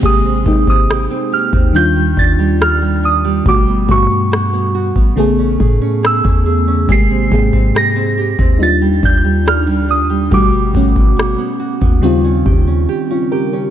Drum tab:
SD |----r-------r---|----r-------r---|----r-------r---|----r-----------|
BD |o-oo---o--o-----|o-o----o--o--o--|o-oo---o--o-----|o-oo---o--o-----|